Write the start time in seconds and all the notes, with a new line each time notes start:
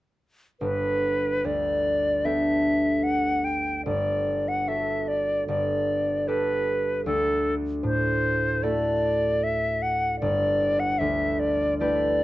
0.60 G1 B4
1.44 D2 D5
2.24 B3 D4 G4 A4 E5
3.03 F#5
3.44 G5
3.86 G1 D5
4.48 F#5
4.67 F#4 A4 E5
5.08 D5
5.48 G1 D5
6.28 G4 A4 B4
7.06 D2 A4
7.82 A2 C5
8.63 A3 E4 F#4 A4 D5
9.43 E5
9.82 F#5
10.20 G1 D5
10.80 F#5
10.98 D2 E5
11.39 D5
11.78 A3 E4 G4 B4 D5